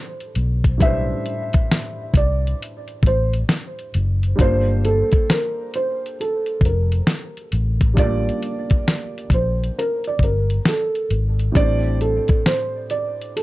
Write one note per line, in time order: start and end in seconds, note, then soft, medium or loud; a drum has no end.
0.00 0.75 A2 medium
0.00 0.76 G3 medium
0.00 0.77 D4 medium
0.00 0.78 A4 medium
0.00 0.17 C5 medium
0.00 0.79 C5 medium
0.20 closed hi-hat soft
0.35 1.12 B1 medium
0.35 closed hi-hat medium
0.64 kick medium
0.64 closed hi-hat soft
0.78 4.33 A2 medium
0.78 4.34 G3 medium
0.78 4.35 D4 medium
0.78 kick loud
0.78 closed hi-hat medium
0.82 4.36 B4 medium
0.82 4.37 C5 medium
0.82 2.12 E5 loud
1.26 closed hi-hat medium
1.53 kick medium
1.53 closed hi-hat soft
1.71 snare loud
1.71 closed hi-hat medium
2.14 2.53 C2 medium
2.14 2.57 D5 medium
2.14 kick loud
2.14 closed hi-hat medium
2.47 closed hi-hat soft
2.62 closed hi-hat medium
2.88 closed hi-hat soft
3.03 3.42 A1 medium
3.03 kick medium
3.03 closed hi-hat medium
3.07 3.32 C5 medium
3.33 closed hi-hat soft
3.49 snare loud
3.49 closed hi-hat medium
3.79 closed hi-hat soft
3.94 4.32 F#1 medium
3.94 closed hi-hat medium
4.23 closed hi-hat soft
4.36 5.01 G1 loud
4.36 7.91 G3 medium
4.36 7.92 D4 soft
4.36 7.93 F4 medium
4.36 kick medium
4.40 7.94 A#3 medium
4.40 7.93 G4 medium
4.40 4.81 C5 loud
4.40 7.95 C5 medium
4.40 closed hi-hat medium
4.85 5.29 A4 medium
4.85 closed hi-hat medium
5.12 kick medium
5.12 closed hi-hat medium
5.30 5.70 A#4 medium
5.30 snare loud
5.30 closed hi-hat medium
5.74 6.15 C5 medium
5.74 closed hi-hat medium
6.06 closed hi-hat soft
6.20 6.60 A4 medium
6.20 closed hi-hat medium
6.46 closed hi-hat soft
6.61 7.00 F1 medium
6.61 kick medium
6.65 7.33 A#4 medium
6.65 closed hi-hat medium
6.92 closed hi-hat soft
7.07 snare loud
7.07 closed hi-hat medium
7.37 closed hi-hat soft
7.52 8.29 A1 medium
7.52 closed hi-hat medium
7.81 kick medium
7.81 closed hi-hat medium
7.94 11.50 G3 medium
7.94 11.50 D4 medium
7.94 11.51 F4 medium
7.94 kick loud
7.98 11.52 A#3 medium
7.98 11.52 G4 soft
7.98 9.28 D5 loud
7.98 11.53 D5 medium
7.98 closed hi-hat medium
8.29 closed hi-hat soft
8.43 closed hi-hat medium
8.70 kick medium
8.70 closed hi-hat medium
8.88 snare loud
8.88 closed hi-hat medium
9.18 closed hi-hat soft
9.30 9.69 A#1 medium
9.30 kick medium
9.30 closed hi-hat medium
9.34 9.77 C5 medium
9.64 closed hi-hat soft
9.79 10.03 A#4 medium
9.79 closed hi-hat medium
10.04 10.21 D5 medium
10.04 closed hi-hat soft
10.19 10.58 G1 medium
10.19 kick medium
10.19 closed hi-hat medium
10.24 10.63 A#4 medium
10.50 closed hi-hat soft
10.65 11.08 A4 medium
10.65 snare loud
10.65 closed hi-hat medium
10.95 closed hi-hat soft
11.11 11.49 G#1 medium
11.11 closed hi-hat medium
11.39 closed hi-hat soft
11.52 12.18 A1 loud
11.52 13.43 A2 medium
11.52 13.43 G3 soft
11.52 13.43 C4 soft
11.52 kick medium
11.56 13.43 D4 medium
11.56 13.43 C5 medium
11.56 11.97 D5 loud
11.56 closed hi-hat medium
12.01 12.41 A4 medium
12.01 closed hi-hat medium
12.28 kick medium
12.28 closed hi-hat medium
12.46 12.86 C5 medium
12.46 snare loud
12.46 closed hi-hat medium
12.90 13.31 D5 medium
12.90 closed hi-hat medium
13.22 closed hi-hat soft
13.36 13.43 A4 medium
13.36 closed hi-hat medium